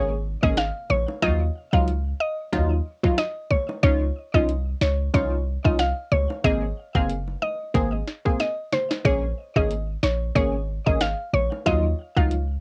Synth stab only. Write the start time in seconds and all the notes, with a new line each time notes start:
Already playing: A#3 C#4 G#4
0.43 A#3 C#4 G#4
1.22 F#3 D#4 F4
1.73 F#3 D#4 F4
2.53 F#3 D#4 F4
3.04 F#3 D#4 F4
3.83 C#4 D#4 F4
4.34 C#4 D#4 F4
5.14 C#4 D#4 F4
5.64 C#4 D#4 F4
6.44 A#3 C4 G#4
6.95 A#3 C4 G#4
7.74 A#3 C4 G#4
8.25 A#3 C4 G#4
9.05 A#3 C#4 G#4
9.56 A#3 C#4 G#4
10.35 A#3 C#4 G#4
10.86 A#3 C#4 G#4
11.66 F#3 D#4 F4
12.17 F#3 D#4 F4